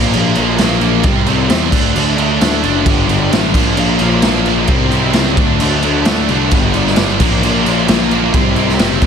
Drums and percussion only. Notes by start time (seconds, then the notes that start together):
0.13 crash
0.35 crash
0.58 snare, crash
0.81 crash
1.03 kick, crash
1.26 crash
1.50 snare, crash
1.72 kick, crash
1.96 crash
2.18 crash
2.41 snare, crash
2.64 crash
2.86 kick, crash
3.09 crash
3.32 snare, crash
3.54 kick, crash
3.77 crash
3.99 crash
4.22 snare, crash
4.46 crash
4.67 kick, crash
4.91 crash
5.13 snare, crash
5.37 kick, crash
5.60 crash
5.83 crash
6.05 snare, crash
6.29 crash
6.51 kick, crash
6.74 crash
6.87 snare
6.96 snare, crash
7.20 kick, crash
7.43 crash
7.66 crash
7.88 snare, crash
8.11 crash
8.34 kick, crash
8.56 crash
8.69 snare
8.79 snare, crash
9.02 kick, crash